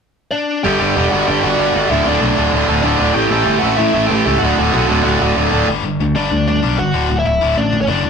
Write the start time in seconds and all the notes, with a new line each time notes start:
0.31 D4 D5
0.63 G1 G2 D3 G3 G4 G5
0.80 G1 G2 D3 G3
0.96 E1 G2 D3 G3
1.11 G1 G2 D3 G3 F#4 F#5
1.27 G1 G2 D3 G3 G4 G5
1.43 G1 G2 D3 G3 F#4 F#5
1.58 G1 G2 D3 G3
1.74 G1 G2 D3 G3
1.89 D1 D2 A2 D3 E4 E5
2.05 D1 D2 A2 D3 D4 D5
2.21 B1 D2 A2 D3
2.37 D1 D2 A2 D3
2.52 D1 D2 A2 D3
2.68 D1 D2 A2 D3
2.82 D1 D2 A2 D3 D4 D5
2.99 D1 D2 A2 D3
3.14 A1 A2 E3 A3 G4 G5
3.30 A1 A2 E3 A3
3.46 G1 A2 E3 A3
3.59 A2 E3 A3 F#4 F#5
3.63 A1
3.76 A1 A2 E3 A3 E4 E5
3.93 A1 A2 E3 A3
4.07 A1 A2 E3 G5
4.11 A3 G4
4.26 C#2 A2 E3 A3
4.39 D1 D2 A2 D3 F#5
4.43 F#4
4.57 D1 D2 A2 D3
4.73 B1 D2 A2 D3
4.89 D1 D2 A2 D3
5.04 D1 D2 A2 D3
5.20 D1 D2 A2 D3
5.36 D1 D2 A2 D3
5.51 D1 D2 A2 D3
5.68 G1 G2 D3 G3
5.83 G1 G2 D3
6.00 D2 G2 D3
6.15 G1 G2 D3 G3 D4 D5
6.31 D2 G2 D3
6.47 G2 D3 D4 D5
6.63 B1 G2 D3 G3
6.78 G1 G2 D3 F#4 F#5
6.93 D1 D2 A2 D3
7.09 D1 D2 A2
7.19 E4 E5
7.25 D1 D2 A2 E4 E5
7.41 D1 D2 A2 D3
7.56 A1 D2 A2 D4 D5
7.73 A1 D2 A2
7.81 C#4 C#5
7.87 F#1 D2 A2 D3 D4 D5
8.03 G1 D2 A2